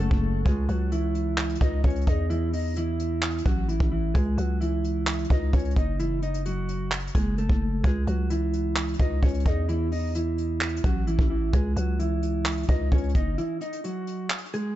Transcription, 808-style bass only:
0.11 0.44 F#1 loud
0.46 0.68 C#2 loud
0.69 1.57 C#2 loud
1.61 1.83 C#2 loud
1.84 2.06 C#2 loud
2.07 3.42 E2 loud
3.46 3.79 A1 loud
3.80 4.14 A1 loud
4.15 4.37 C#2 loud
4.38 5.27 C#2 loud
5.30 5.52 C#2 loud
5.53 5.76 C#2 loud
5.76 7.11 F#1 loud
7.15 7.48 F#1 loud
7.49 7.83 F#1 loud
7.84 8.06 C#2 loud
8.07 8.96 C#2 loud
9.00 9.22 C#2 loud
9.23 9.45 C#2 loud
9.46 10.80 E2 loud
10.84 11.17 A1 loud
11.19 11.52 A1 loud
11.53 11.76 C#2 loud
11.76 12.65 C#2 loud
12.69 12.91 C#2 loud
12.92 13.14 C#2 loud
13.15 13.37 F#1 loud

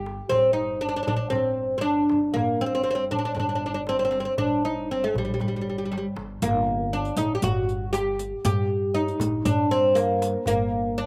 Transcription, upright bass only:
0.00 0.19 G1 medium
0.32 0.98 G1 medium
1.08 1.30 A#1 medium
1.35 2.01 G1 medium
2.12 2.33 G1 medium
2.36 3.02 G1 medium
3.13 3.35 G1 medium
3.38 4.26 G1 medium
4.39 5.05 G1 medium
5.14 5.37 A#1 medium
5.39 6.06 G1 medium
6.16 6.38 G1 medium
6.42 7.08 G1 loud
7.18 7.40 G1 medium
7.44 8.32 G1 loud
8.45 9.11 G2 medium
9.20 9.42 G1 medium
9.46 10.34 G2 medium
10.47 11.06 G1 loud

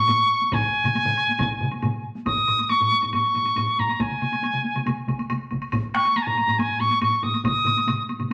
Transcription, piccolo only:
0.00 0.55 C#6 loud
0.54 2.06 G#5 medium
2.26 2.71 D#6 medium
2.70 3.13 C#6 medium
3.13 3.81 C#6 medium
3.79 3.94 A#5 medium
3.94 4.02 A#5 soft
4.01 5.30 G#5 medium
5.95 6.18 C#6 medium
6.16 6.24 A#5 medium
6.22 6.28 G#5 medium
6.27 6.60 A#5 medium
6.58 6.82 G#5 medium
6.80 7.02 C#6 medium
7.02 7.25 C#6 medium
7.23 7.44 D#6 medium
7.45 8.05 D#6 medium

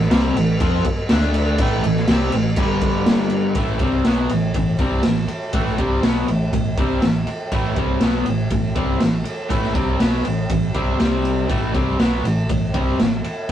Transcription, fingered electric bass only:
0.10 0.33 C2 loud
0.34 0.58 A1 medium
0.60 0.83 F2 loud
1.10 1.55 D2 medium
1.58 1.81 A1 loud
1.83 2.06 A1 medium
2.07 2.31 C2 loud
2.33 2.56 A1 medium
2.57 3.52 G1 loud
3.56 3.79 A1 medium
3.80 4.03 C2 medium
4.05 4.28 B1 medium
4.30 4.53 A1 medium
4.54 4.78 A1 medium
4.79 5.02 C2 medium
5.05 5.28 A1 medium
5.30 muted fingered electric bass stroke soft
5.53 5.77 A1 loud
5.78 6.01 C2 medium
6.03 6.26 B1 medium
6.27 6.51 A1 medium
6.53 6.76 A1 medium
6.78 7.01 C2 medium
7.03 7.26 A1 medium
7.28 muted fingered electric bass stroke soft
7.52 7.75 A1 medium
7.76 8.00 C2 loud
8.01 8.24 B1 medium
8.26 8.49 A1 medium
8.51 8.74 A1 medium
8.75 8.99 C2 medium
9.01 9.24 A1 medium
9.26 muted fingered electric bass stroke soft
9.50 9.73 A1 medium
9.75 9.98 C2 medium
10.00 10.23 B1 medium
10.25 10.48 A1 medium
10.50 10.73 A1 medium
10.74 10.98 C2 medium
11.00 11.46 C2 medium
11.49 11.73 A1 medium
11.75 11.98 C2 medium
11.99 12.22 B1 medium
12.24 12.47 A1 medium
12.50 12.73 A1 medium
12.74 12.97 C2 medium
12.99 13.22 A1 medium
13.24 muted fingered electric bass stroke soft

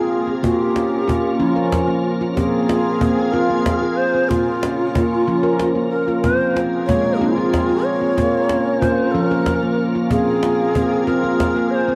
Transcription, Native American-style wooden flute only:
0.00 0.39 G#4 medium
0.43 0.62 F#4 medium
0.62 1.41 G4 medium
1.40 1.51 E4 medium
1.51 2.13 F4 medium
2.35 3.33 G#4 medium
3.31 3.98 A#4 medium
3.97 4.31 C5 medium
4.29 5.90 F4 medium
5.90 6.21 A#4 medium
6.22 6.58 C5 medium
6.87 7.21 C#5 medium
7.19 7.86 F4 loud
7.84 8.83 C#5 loud
8.81 9.13 C5 medium
9.11 9.25 A4 medium
9.25 9.85 A#4 medium
10.11 11.04 G#4 medium
11.06 11.72 A#4 medium
11.71 11.76 C#5 medium
11.75 11.95 C5 medium

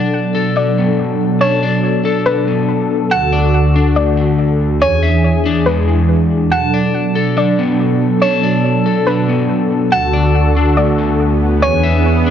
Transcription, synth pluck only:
0.00 0.11 F#5 loud
0.56 1.37 D5 medium
1.41 1.81 C#5 medium
2.26 3.07 B4 medium
3.11 3.51 F#5 loud
3.96 4.77 D5 medium
4.82 5.22 C#5 loud
5.66 6.47 B4 medium
6.51 6.92 F#5 loud
7.37 8.18 D5 medium
8.22 8.62 C#5 medium
9.07 9.88 B4 medium
9.92 10.32 F#5 loud
10.77 11.58 D5 medium
11.62 12.02 C#5 loud

